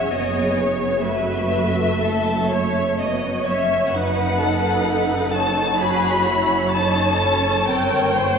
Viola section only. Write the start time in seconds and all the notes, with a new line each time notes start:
0.11 B3 G#4
1.05 A3 F#4
2.03 A4
2.52 C#5
3.01 B3
3.48 C#4
3.94 D#4 B4
4.41 D#4
4.87 A4
5.33 C#5
5.81 F#4
6.28 E4
6.75 D#4
7.22 C#4
7.70 C4
8.16 A#3